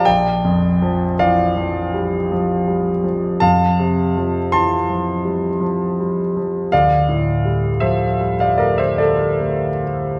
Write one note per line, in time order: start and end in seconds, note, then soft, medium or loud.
0.05 3.38 A#1 soft
0.05 1.14 D5 medium
0.05 1.18 G5 medium
0.45 1.04 F2 soft
0.82 1.41 F3 soft
1.19 1.56 E3 soft
1.19 3.39 D5 medium
1.19 3.40 F5 medium
1.57 2.16 F3 soft
1.94 2.31 G3 soft
2.32 2.90 F3 soft
2.68 3.05 G3 soft
3.04 3.42 F3 soft
3.40 6.67 F2 soft
3.40 4.49 F5 medium
3.40 4.52 A5 medium
3.79 4.38 C3 soft
4.17 4.75 F3 soft
4.52 4.89 E3 soft
4.52 6.68 A5 medium
4.52 6.71 C6 medium
4.89 5.47 F3 soft
5.25 5.62 G3 soft
5.60 6.20 F3 soft
6.00 6.36 G3 soft
6.37 6.72 F3 soft
6.72 10.20 D2 soft
6.72 7.80 D5 medium
6.72 7.83 F5 medium
7.09 7.68 A2 soft
7.45 8.05 G3 soft
7.80 8.20 F3 soft
7.80 8.35 C5 soft
7.80 8.38 E5 medium
8.21 8.83 G3 soft
8.40 8.56 D5 soft
8.40 8.59 F5 medium
8.58 9.00 A3 soft
8.58 8.78 A#4 soft
8.58 8.78 D5 medium
8.78 8.98 C5 soft
8.78 8.99 E5 medium
8.98 9.67 G3 soft
8.98 10.20 A4 medium
8.98 10.20 D5 medium
9.40 9.84 A3 soft
9.84 10.20 G3 soft